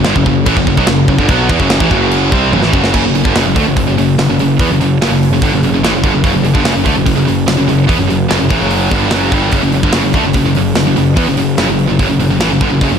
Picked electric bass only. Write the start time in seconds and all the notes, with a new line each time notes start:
0.07 G1
0.16 F#1
0.26 F#1
0.46 A1
0.56 F#1
0.67 F#1
0.77 B1
0.88 F#1
1.08 F#1
1.19 G1
1.28 B1
1.49 E2
1.60 F#1
1.81 A1
1.91 F#1
2.32 C2
2.52 F#1
2.62 A1
2.73 F#1
2.94 F#1
3.05 F#1
3.16 F#1
3.25 G1
3.36 F#1
3.46 F#1
3.56 D2
3.67 F#1
3.77 F#1
3.88 F#1
3.99 F#1
4.19 F#1
4.29 F#1
4.39 F#1
4.59 E2
4.70 F#1
4.80 F#1
5.02 F#1
5.10 F#1
5.30 F#1
5.41 G1
5.53 F#1
5.62 F#1
5.71 F#1
5.82 A1
5.93 F#1
6.04 G1
6.13 F#1
6.24 F#1
6.35 F#1
6.44 F#1
6.55 G1
6.64 F#1
6.75 F#1
6.86 D2
6.96 F#1
7.06 F#1
7.16 F#1
7.28 F#1
7.48 F#1
7.60 F#1
7.70 F#1
7.89 E2
7.99 F#1
8.10 F#1
8.30 F#1
8.42 F#1
8.50 A1
8.61 F#1
8.91 G1
9.12 F#1
9.32 G1
9.52 F#1
9.63 F#1
9.73 F#1
9.83 G1
9.95 F#1
10.04 F#1
10.14 D2
10.24 F#1
10.34 F#1
10.45 F#1
10.55 F#1
10.75 F#1
10.87 F#1
10.97 F#1
11.17 E2
11.26 F#1
11.37 F#1
11.58 F#1
11.68 F#1
11.89 F#1
12.00 G1
12.09 F#1
12.19 F#1
12.29 F#1
12.40 A1
12.49 F#1
12.61 G1
12.71 F#1
12.81 F#1
12.90 F#1